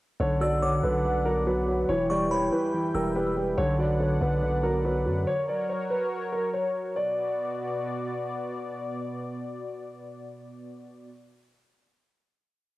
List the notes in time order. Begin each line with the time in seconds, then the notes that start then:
0.20 B1 D3 B3 B4 C#5 D5 F#5
0.41 F#3 D5 E6
0.62 D3 C#5 D6
0.83 B1 D3 B4
1.05 D3
1.26 F#3 A#4
1.47 F#3 B4
1.68 F#3
1.89 E1 E3 E4 C#5 G5
2.10 G3 D5 C#6
2.31 E3 C#5 B5
2.52 E3 B4
2.74 E3
2.95 E1 G3 A#4 E6
3.16 G3 B4
3.37 G3
3.58 B1 D3 B3 C#5 D5 F#5
3.79 F#3 D5
4.00 D3 C#5
4.21 B1 D3 B4
4.42 D3
4.63 F#3 A#4
4.85 F#3 B4
5.06 F#2 F#3
5.27 F#3 F#4 A#4 C#5
5.48 D5
5.69 C#5
5.90 B4
6.32 A#4
6.54 C#5
6.96 B2 B3 F#4 D5